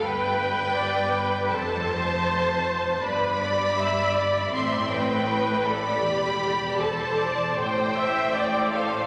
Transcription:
<<
  \new Staff \with { instrumentName = "Violin section" } { \time 4/4 \key a \minor \tempo 4 = 79 g''2 a''2 | b''2 c'''8 g''4 b''8~ | b''4 a''4 g''4. f''8 | }
  \new Staff \with { instrumentName = "Viola section" } { \time 4/4 \key a \minor b'4 d''8 b'8 a'8 c''4. | b'8 d''8 e''8 d''8 c'4 b'8 a'8 | g'4 a'8 d''8 c''8 e''8 d''8 c''8 | }
  \new Staff \with { instrumentName = "Violin section" } { \time 4/4 \key a \minor b'2 c''2 | d''2 e''8 b'4 d''8~ | d''4 c''4 c''4. a'8 | }
  \new Staff \with { instrumentName = "Cello section" } { \clef bass \time 4/4 \key a \minor g,2 f,2 | g,2 a,2 | e,2 a,2 | }
  \new Staff \with { instrumentName = "Double bass section" } { \clef bass \time 4/4 \key a \minor g,,2 f,,2 | g,,2 a,,2 | e,,2 a,,2 | }
>>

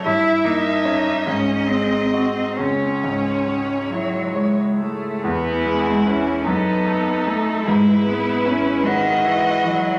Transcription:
<<
  \new Staff \with { instrumentName = "Violin" } { \time 6/8 \key cis \minor \tempo 4. = 49 e''4. dis''4. | cis''2~ cis''16 r8. | \key e \major gis'4. a'4. | b'4. dis''4. | }
  \new Staff \with { instrumentName = "Violin" } { \time 6/8 \key cis \minor r2. | r2. | \key e \major e'4. dis'4. | e'4. fis'4. | }
  \new Staff \with { instrumentName = "Cello" } { \time 6/8 \key cis \minor e'8 dis'4 cis'8 bis8 bis8 | cis'4. fis8 gis8 a8 | \key e \major b8. gis16 cis'8 b4 a8 | gis8 b8 cis'8 dis8 e8 fis8 | }
  \new Staff \with { instrumentName = "Grand piano" } { \time 6/8 \key cis \minor g,8 bes8 <des' des''>8 gis,8 gis8 <fis' dis''>8 | cis,8 gis,8 gis8 e'8 cis''8 gis8 | \key e \major e,8 gis8 <e' b'>8 fis,8 a8 <dis' a'>8 | gis,8 gis8 e'8 b'8 e'8 e8 | }
>>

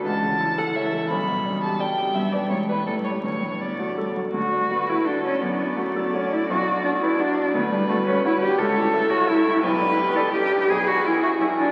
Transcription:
<<
  \new Staff \with { instrumentName = "Violin" } { \time 3/4 \key d \major \tempo 4 = 170 a''4. fis''8 e''4 | b''4. a''8 g''4 | e''8 d''8 cis''8 b'8 a'8 cis''8 | cis''4 d''4. r8 |
r4 b'4 a'4 | d''2.~ | d''2. | b'2 b'4 |
cis''4 e''2 | g'2. | b'4 gis'2 | }
  \new Staff \with { instrumentName = "Grand piano" } { \time 3/4 \key d \major cis,8 cis8 e'8 a'8 cis''8 a'8 | b,,8 b,8 d'8 g'8 d''8 g'8 | g,8 <b' d''>8 gis,8 <b' d''>8 a,8 <g' cis''>8 | d,8 a,8 d'8 fis'8 a'8 fis'8 |
d,8 d'8 fis'8 a'8 fis'8 d'8 | fis,8 d'8 fis'8 a'8 fis'8 d'8 | b,,8 d'8 fis'8 b'8 fis'8 d'8 | d,8 d'8 fis'8 b'8 fis'8 d'8 |
cis,8 e'8 a'8 cis''8 a'8 e'8 | b,,8 d'8 g'8 d''8 g'8 d'8 | b,,8 d'8 e'8 e''8 e'8 d'8 | }
  \new Staff \with { instrumentName = "Cello" } { \time 3/4 \key d \major e2 e4 | g2 g4 | b4 e4 g4 | fis4 b8 a8 g8 fis8 |
fis'4. e'8 d'8 cis'8 | b4 a4 cis'8 e'8 | fis'4 d'8 e'8 d'4 | b8 g8 a8 cis'8 e'8 g'8 |
a'4. fis'8 e'4 | b'4. a'8 g'4 | gis'8 fis'8 e'8 fis'8 e'8 d'8 | }
>>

